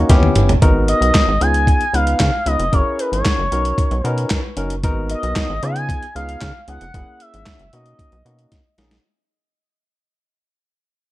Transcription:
Already playing: C#5
0.09 D#2 B3 C#4 E4 G4, kick, snare, closed hi-hat
0.23 high tom
0.35 G1, closed hi-hat, mid tom
0.49 closed hi-hat, floor tom
0.62 G#1 B3 D#4 F#4 A#4, kick, closed hi-hat
0.88 D#5, closed hi-hat
1.01 B1, closed hi-hat
1.14 kick, snare, clap, closed hi-hat
1.28 G#1
1.40 C#2 B3 D#4 F4 G#4 G#5, closed hi-hat
1.54 closed hi-hat
1.67 kick, closed hi-hat
1.81 closed hi-hat
1.93 C#2 B3 D#4 F4 B4 F5, closed hi-hat
2.07 closed hi-hat
2.20 C#3, kick, snare, clap, closed hi-hat
2.46 C#2 B3 D#4 F4 B4 D#5, closed hi-hat
2.59 F1, closed hi-hat
2.72 F#1 C#4 E4 G#4 A#4 C#5, kick, closed hi-hat
2.99 B4, closed hi-hat
3.12 G#1 C#5, closed hi-hat
3.25 kick, snare, clap, closed hi-hat
3.39 F#1
3.52 B1 C#4 D#4 F#4 A#4, closed hi-hat
3.65 closed hi-hat
3.78 kick, closed hi-hat
3.91 B1, closed hi-hat
4.04 B2 C#4 D#4 F#4 A#4 B4, closed hi-hat
4.18 closed hi-hat
4.30 kick, snare, clap, closed hi-hat
4.57 F#1 C#4 D#4 F#4 A#4, closed hi-hat
4.70 closed hi-hat
4.83 G#1 B3 D#4 F#4 A#4, kick, closed hi-hat
5.10 D#5, closed hi-hat
5.23 B1, closed hi-hat
5.36 kick, snare, clap, closed hi-hat
5.50 G#1
5.63 C#3 B3 D#4 F4 G#4 G#5, closed hi-hat
5.76 closed hi-hat
5.89 kick, closed hi-hat
6.03 closed hi-hat
6.15 C#2 B3 D#4 F4 G#4 F5, closed hi-hat
6.29 closed hi-hat
6.41 C#3, kick, snare, clap, closed hi-hat
6.68 C#2 B3 D#4 F4 G#4 F#5, closed hi-hat
6.81 F1, closed hi-hat
6.94 F#1 A#3 C#4 E4 G#4, kick, closed hi-hat
7.20 E5, closed hi-hat
7.34 G#1, closed hi-hat
7.46 kick, snare, clap, closed hi-hat
7.59 F#1, closed hi-hat
7.73 B2 A#3 C#4 D#4 F#4 D#5, closed hi-hat
7.86 closed hi-hat
7.99 kick, closed hi-hat
8.12 B1, closed hi-hat
8.25 B2 A#3 C#4 D#4 F#4, closed hi-hat
8.39 closed hi-hat
8.52 kick, snare, closed hi-hat
8.78 A#1 A#3 C#4 D#4 G#4, snare, closed hi-hat
8.91 snare, closed hi-hat

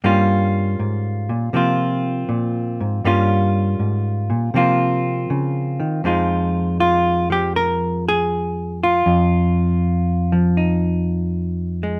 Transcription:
0.04 G2 G3 A#3 C#4 F4
0.80 G#2
1.29 A#2
1.53 C3 F3 A#3 C4 F4
2.29 A#2
2.81 G#2
3.05 G2 G3 A#3 C#4 F4
3.79 G#2
4.30 A#2
4.54 C3 F3 A#3 C4 F4
5.30 C#3
5.80 D#3
6.04 F2 F3 G#3 D#4 F4
6.80 F4
7.30 F3 G4
7.56 A#4
8.09 G#4
8.83 F4
9.06 F2
10.32 F3
10.57 D#4
11.83 G#3

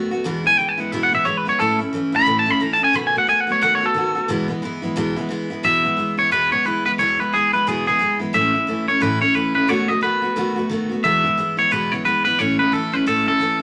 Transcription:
Already playing: D#3 A3 B3
0.11 A3 B3 F#4
0.24 E2 B2 E3 G#3 B3 E4
0.44 E3 G#3 B3 E4 G#5
0.58 E3 G#3 B3 E4 G5
0.69 G#5
0.78 E3 G#3 B3 E4 F#5
0.92 E2 B2 E3 G#3 B3 E4 E5
1.03 F#5
1.11 E3 G#3 B3 E4 E5
1.25 E3 G#3 B3 E4 C#5
1.37 B4
1.45 E3 G#3 B3 E4 C#5
1.59 A2 E3 A3 C#4 E4 A4
1.79 A3 C#4 E4
1.93 E3 A3 C#4 E4
2.12 A3 C#4 E4 B5
2.26 A2 E3 A3 C#4 E4
2.39 A5
2.46 A3 C#4 E4
2.51 B5
2.60 E3 A3 C#4 E4 A#5
2.73 A5
2.79 A3 C#4 E4
2.84 G#5
2.93 B2 D#3 A3 B3 F#4 B5
3.07 G#5
3.13 A3 B3 F#4
3.18 F#5
3.27 D#3 A3 B3 F#4 G#5
3.40 F#5
3.47 A3 B3 F#4
3.52 C#5
3.61 B2 D#3 A3 B3 F#4 F#5
3.75 C#5
3.81 A3 B3 F#4
3.86 A4
3.94 D#3 A3 B3 F#4
4.15 A3 B3 F#4
4.28 E2 B2 E3 G#3 B3 E4
4.48 E3 G#3 B3 E4
4.62 E3 G#3 B3 E4
4.82 E3 G#3 B3 E4
4.96 E2 B2 E3 G#3 B3 E4
5.16 E3 G#3 B3 E4
5.29 E3 G#3 B3 E4
5.50 E3 G#3 B3 E4
5.63 E2 B2 E3 G#3 B3 E4 E5
5.83 E3 G#3 B3 E4
5.97 E3 G#3 B3 E4
6.17 E3 G#3 B3 E4 C#5
6.31 E2 B2 E3 G#3 B3 E4 B4
6.51 E3 G#3 B3 E4 C#5
6.64 E3 G#3 B3 E4 B4
6.85 E3 G#3 B3 E4 B4
6.98 E2 B2 E3 G#3 B3 E4 C#5
7.19 E3 G#3 B3 E4 B4
7.33 E3 G#3 B3 E4 G#4
7.53 E3 G#3 B3 E4 B4
7.67 E2 B2 E3 G#3 B3 E4 G#4
7.87 E3 G#3 B3 E4 G#4
7.99 E3 G#3 B3 E4
8.19 E3 G#3 B3 E4
8.33 A2 E3 A3 C#4 E4 E5
8.53 A3 C#4 E4
8.67 E3 A3 C#4 E4
8.87 A3 C#4 E4 C#5
9.00 A2 E3 A3 C#4 E4 B4
9.20 A3 C#4 E4 C#5
9.34 E3 A3 C#4 E4 B4
9.54 A3 C#4 E4 B4
9.67 B2 D#3 A3 B3 F#4 C#5
9.88 A3 B3 F#4 D#5
10.01 D#3 A3 B3 F#4 B4
10.22 A3 B3 F#4
10.36 B2 D#3 A3 B3 F#4
10.56 A3 B3 F#4
10.69 D#3 A3 B3 F#4
10.90 A3 B3 F#4
11.04 E2 B2 E3 G#3 B3 E4 E5
11.24 E3 G#3 B3 E4
11.38 E3 G#3 B3 E4
11.57 E3 G#3 B3 E4 C#5
11.71 E2 B2 E3 G#3 B3 E4 B4
11.92 E3 G#3 B3 E4 C#5
12.05 E3 G#3 B3 E4 B4
12.25 E3 G#3 B3 E4 B4
12.39 A2 E3 A3 C#4 E4 C#5
12.59 A3 C#4 E4 B4
12.72 E3 A3 C#4 E4 A4
12.92 A3 C#4 E4 B4
13.06 A2 E3 A3 C#4 E4 A4
13.26 A3 C#4 E4 A4
13.40 E3 A3 C#4 E4

